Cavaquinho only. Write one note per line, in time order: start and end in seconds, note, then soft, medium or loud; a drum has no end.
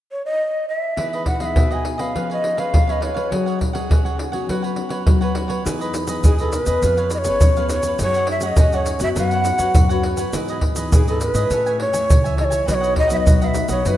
0.96 1.10 E4 soft
0.96 1.11 G#4 soft
0.96 1.11 B4 soft
0.96 1.12 D#5 soft
1.13 1.27 G#4 soft
1.13 1.27 B4 medium
1.13 1.26 D#5 medium
1.28 muted cavaquinho stroke soft
1.41 1.56 G#4 soft
1.41 1.55 B4 medium
1.41 1.55 D#5 medium
1.56 1.70 E4 soft
1.56 1.70 G#4 soft
1.56 1.70 B4 soft
1.56 1.69 D#5 soft
1.71 1.83 G#4 soft
1.71 1.85 B4 soft
1.71 1.84 D#5 medium
1.84 muted cavaquinho stroke soft
1.98 2.13 G#4 soft
1.98 2.13 B4 medium
1.98 2.12 D#5 medium
2.15 2.28 F4 soft
2.15 2.28 B4 soft
2.15 2.29 C#5 soft
2.15 2.28 F5 medium
2.30 2.59 B4 soft
2.30 2.58 C#5 medium
2.30 2.56 F5 medium
2.57 2.87 B4 soft
2.57 2.87 C#5 medium
2.57 2.86 F5 medium
2.87 2.99 B4 medium
2.87 3.01 C#5 medium
2.87 3.01 F5 medium
3.00 3.15 F4 soft
3.00 3.15 B4 soft
3.00 3.14 C#5 soft
3.00 3.13 F5 soft
3.14 3.30 B4 medium
3.14 3.30 C#5 medium
3.14 3.29 F5 medium
3.31 3.45 F#4 soft
3.31 3.45 G#4 soft
3.31 3.45 C#5 medium
3.31 3.45 F#5 soft
3.46 3.59 G#4 medium
3.46 3.59 C#5 medium
3.46 3.59 F#5 medium
3.59 muted cavaquinho stroke soft
3.73 3.89 G#4 soft
3.73 3.89 C#5 medium
3.73 3.88 F#5 medium
3.89 4.03 F#4 soft
3.89 4.04 G#4 soft
3.89 4.04 C#5 medium
3.89 4.04 F#5 soft
4.05 4.17 G#4 soft
4.05 4.18 C#5 medium
4.05 4.18 F#5 medium
4.18 muted cavaquinho stroke soft
4.32 4.48 G#4 soft
4.32 4.47 C#5 medium
4.32 4.47 F#5 medium
4.49 4.63 F#4 soft
4.49 4.63 B4 soft
4.49 4.62 C#5 medium
4.49 4.61 F#5 medium
4.62 4.91 B4 medium
4.62 4.89 C#5 medium
4.62 4.88 F#5 medium
4.89 5.21 B4 medium
4.89 5.20 C#5 medium
4.89 5.19 F#5 medium
5.21 5.34 B4 medium
5.21 5.35 C#5 medium
5.21 5.35 F#5 medium
5.35 5.50 F#4 soft
5.35 5.49 B4 soft
5.35 5.48 C#5 soft
5.35 5.47 F#5 soft
5.48 5.64 B4 soft
5.48 5.64 C#5 medium
5.48 5.63 F#5 medium
5.65 5.79 E4 soft
5.65 5.79 G#4 soft
5.65 5.80 B4 medium
5.65 5.79 D#5 soft
5.81 5.93 G#4 medium
5.81 5.94 B4 medium
5.81 5.94 D#5 medium
5.94 muted cavaquinho stroke soft
6.09 6.24 G#4 soft
6.09 6.24 B4 medium
6.09 6.23 D#5 medium
6.24 6.38 E4 soft
6.24 6.38 G#4 soft
6.24 6.39 B4 medium
6.24 6.39 D#5 soft
6.40 6.68 G#4 medium
6.40 6.67 B4 medium
6.40 6.65 D#5 medium
6.67 6.82 G#4 soft
6.67 6.82 B4 medium
6.67 6.81 D#5 medium
6.83 6.97 F4 soft
6.83 6.97 B4 soft
6.83 6.97 C#5 medium
6.83 6.96 F5 medium
6.97 7.26 B4 medium
6.97 7.26 C#5 medium
6.97 7.24 F5 medium
7.25 7.55 B4 medium
7.25 7.55 C#5 medium
7.25 7.54 F5 medium
7.57 7.69 B4 medium
7.57 7.70 C#5 medium
7.57 7.70 F5 medium
7.69 7.84 F4 soft
7.69 7.84 B4 soft
7.69 7.84 C#5 soft
7.69 7.84 F5 soft
7.85 8.00 B4 medium
7.85 7.99 C#5 medium
7.85 7.99 F5 medium
8.01 8.14 F#4 soft
8.01 8.15 G#4 medium
8.01 8.15 C#5 medium
8.01 8.15 F#5 medium
8.16 8.29 G#4 medium
8.16 8.29 C#5 medium
8.16 8.29 F#5 medium
8.30 muted cavaquinho stroke soft
8.43 8.58 G#4 medium
8.43 8.57 C#5 medium
8.43 8.57 F#5 medium
8.59 8.72 F#4 soft
8.59 8.73 G#4 soft
8.59 8.73 C#5 medium
8.59 8.72 F#5 medium
8.74 9.01 G#4 medium
8.74 9.00 C#5 medium
8.74 8.99 F#5 medium
9.00 9.16 G#4 medium
9.00 9.16 C#5 medium
9.00 9.15 F#5 medium
9.17 9.30 F#4 soft
9.17 9.31 B4 medium
9.17 9.31 C#5 soft
9.17 9.31 F#5 medium
9.32 9.59 B4 soft
9.32 9.58 C#5 medium
9.32 9.57 F#5 medium
9.58 9.89 B4 medium
9.58 9.88 C#5 medium
9.58 9.88 F#5 medium
9.89 10.03 B4 medium
9.89 10.03 C#5 medium
9.89 10.03 F#5 medium
10.03 10.18 F#4 soft
10.03 10.18 B4 soft
10.03 10.18 C#5 medium
10.03 10.16 F#5 medium
10.17 10.33 B4 medium
10.17 10.33 C#5 medium
10.17 10.32 F#5 medium
10.33 10.47 E4 soft
10.33 10.48 G#4 soft
10.33 10.48 B4 medium
10.33 10.48 D#5 medium
10.49 10.62 G#4 medium
10.49 10.63 B4 medium
10.49 10.63 D#5 medium
10.64 muted cavaquinho stroke soft
10.77 10.92 G#4 medium
10.77 10.91 B4 medium
10.77 10.91 D#5 medium
10.93 11.06 E4 soft
10.93 11.07 G#4 soft
10.93 11.07 B4 soft
10.93 11.07 D#5 medium
11.08 11.36 G#4 medium
11.08 11.35 B4 medium
11.08 11.34 D#5 medium
11.35 11.51 G#4 soft
11.35 11.50 B4 medium
11.35 11.49 D#5 medium
11.51 11.65 A4 soft
11.51 11.65 C#5 soft
11.51 11.65 E5 medium
11.51 11.65 G#5 medium
11.66 11.94 C#5 soft
11.66 11.93 E5 medium
11.66 11.92 G#5 medium
11.93 12.23 C#5 soft
11.93 12.23 E5 medium
11.93 12.22 G#5 medium
12.24 12.37 C#5 medium
12.24 12.38 E5 medium
12.24 12.38 G#5 medium
12.37 12.52 A4 soft
12.37 12.52 C#5 soft
12.37 12.51 E5 soft
12.37 12.49 G#5 soft
12.50 12.66 C#5 medium
12.50 12.66 E5 medium
12.50 12.65 G#5 medium
12.65 12.80 F#4 soft
12.65 12.81 B4 soft
12.65 12.81 D#5 medium
12.65 12.79 F#5 soft
12.81 12.95 B4 medium
12.81 12.95 D#5 medium
12.81 12.95 F#5 medium
12.95 muted cavaquinho stroke soft
13.08 13.25 B4 soft
13.08 13.24 D#5 medium
13.08 13.23 F#5 medium
13.25 13.39 F#4 soft
13.25 13.40 B4 soft
13.25 13.40 D#5 medium
13.25 13.40 F#5 medium
13.41 13.70 B4 soft
13.41 13.69 D#5 medium
13.41 13.68 F#5 medium
13.69 13.84 B4 soft
13.69 13.84 D#5 medium
13.69 13.83 F#5 medium
13.86 13.97 F#4 soft
13.86 13.97 B4 soft
13.86 13.97 D#5 medium
13.86 13.97 F#5 medium